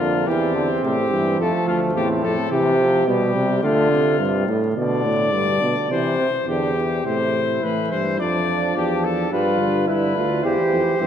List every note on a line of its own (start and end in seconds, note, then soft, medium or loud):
0.00 0.28 F2 medium
0.00 0.26 D3 medium
0.00 0.24 A#3 medium
0.00 0.29 F4 medium
0.26 0.82 E2 medium
0.26 0.54 E3 medium
0.26 1.38 C4 medium
0.26 0.83 G4 medium
0.55 0.68 D3 medium
0.83 1.13 A2 medium
0.83 0.95 C3 medium
0.83 1.38 G4 medium
1.11 1.39 G2 medium
1.11 1.41 E3 medium
1.39 1.52 F2 medium
1.39 1.95 F3 medium
1.39 1.95 A3 medium
1.39 1.67 A4 medium
1.67 1.97 D2 medium
1.67 1.80 F4 medium
1.95 2.23 E2 medium
1.95 2.50 A2 medium
1.95 2.50 C4 medium
1.95 2.08 G4 medium
2.23 2.36 F2 medium
2.23 2.50 A4 medium
2.51 3.08 C3 medium
2.51 2.78 E3 medium
2.51 3.06 G4 medium
2.79 3.06 F3 medium
3.07 3.35 B2 medium
3.07 3.62 G3 medium
3.07 3.62 G4 medium
3.35 3.62 C3 medium
3.63 4.18 D3 medium
3.63 3.90 A3 medium
3.63 4.46 F4 medium
3.91 4.47 C3 medium
4.19 4.47 G2 medium
4.47 4.75 A2 medium
4.76 5.04 B2 medium
4.76 5.29 D3 medium
4.76 5.86 D5 medium
5.04 5.35 A2 medium
5.33 5.61 G2 medium
5.33 5.89 D3 medium
5.62 5.75 B2 medium
5.90 6.26 C3 medium
5.90 6.18 E3 medium
5.90 6.47 C5 medium
6.19 6.32 C3 medium
6.47 7.01 E2 medium
6.47 6.75 D3 medium
6.47 7.05 G4 medium
6.76 7.04 E3 medium
7.05 7.59 A2 medium
7.05 7.59 C3 medium
7.05 7.18 C4 medium
7.05 7.65 C5 medium
7.35 8.18 E4 medium
7.62 7.93 A2 medium
7.62 8.18 E3 medium
7.62 7.91 B4 medium
7.92 8.22 G2 medium
7.92 8.19 C5 medium
8.19 8.76 F2 medium
8.19 9.29 F3 medium
8.19 9.30 D4 medium
8.19 8.75 D5 medium
8.76 9.31 E2 medium
8.76 9.06 G4 medium
9.04 9.32 A4 medium
9.31 9.87 G2 medium
9.31 9.58 G3 medium
9.31 9.89 F4 medium
9.31 9.87 B4 medium
9.59 10.44 D3 medium
9.87 10.15 G2 medium
9.87 10.15 E4 medium
9.87 10.45 B4 medium
10.15 10.43 D2 medium
10.15 10.43 F4 medium
10.42 10.56 E2 medium
10.42 10.98 E3 medium
10.42 10.99 G4 medium
10.42 11.07 C5 medium
10.71 10.84 F2 medium
10.98 11.07 G2 medium
10.98 11.07 E3 medium
10.98 11.07 C4 medium